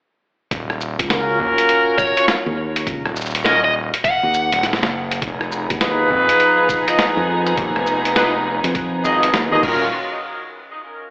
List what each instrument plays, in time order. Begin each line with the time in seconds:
0.51 analog synth bass D#1, kick, closed hi-hat
0.70 cross-stick
0.81 shaker
0.99 fingered electric bass C#2, kick, closed hi-hat
1.10 horn section C#4 F4 F#4 A#4, snare, closed hi-hat
1.40 analog synth bass D#2, kick
1.58 closed hi-hat
1.69 closed hi-hat
1.98 lead electric guitar C#5, kick, shaker
2.17 horn section C#4 F4 F#4 C#5, closed hi-hat
2.28 snare, closed hi-hat
2.46 fingered electric bass D#2
2.76 closed hi-hat
2.87 fingered electric bass C#2, kick, closed hi-hat
3.06 analog synth bass D#1, cross-stick
3.16 shaker
3.21 shaker
3.26 shaker
3.30 shaker
3.35 closed hi-hat, shaker
3.38 shaker
3.41 shaker
3.43 horn section C#4 F4 F#4 A#4, lead electric guitar D#5, snare, closed hi-hat, shaker
3.64 lead electric guitar D#5
3.94 closed hi-hat
4.04 lead electric guitar F#5, kick, closed hi-hat
4.23 fingered electric bass D#2
4.34 shaker
4.52 analog synth bass D#1, closed hi-hat
4.63 snare, closed hi-hat
4.73 snare
4.82 analog synth bass F#1, snare
5.11 closed hi-hat
5.22 analog synth bass F1, string section F3 B3 D#4 G#4, kick, closed hi-hat
5.41 cross-stick
5.52 shaker
5.70 fingered electric bass D#2, kick, closed hi-hat
5.81 horn section D#4 F4 G#4 B4, snare, closed hi-hat
6.10 analog synth bass F2, kick
6.29 closed hi-hat
6.40 closed hi-hat
6.69 kick, shaker
6.88 horn section D#4 F4 G#4 D#5, closed hi-hat
6.99 snare, closed hi-hat
7.17 fingered electric bass F2
7.47 closed hi-hat
7.57 fingered electric bass D#2, kick, closed hi-hat
7.76 analog synth bass F1, cross-stick
7.87 shaker
8.05 closed hi-hat
8.16 horn section D#4 F4 G#4 B4, snare, closed hi-hat
8.64 fingered electric bass F2, closed hi-hat
8.75 kick, closed hi-hat
9.04 analog synth bass G#1, horn section D#4 F4 G#4 D#5, shaker
9.23 closed hi-hat
9.34 fingered electric bass D#2, snare, closed hi-hat
9.52 fingered electric bass D#2, horn section D#4 F4 G#4 D#5
9.63 analog synth bass D#1, string section D#3 C#4 F4 F#4, horn section C#4 F4 F#4 A#4, kick, crash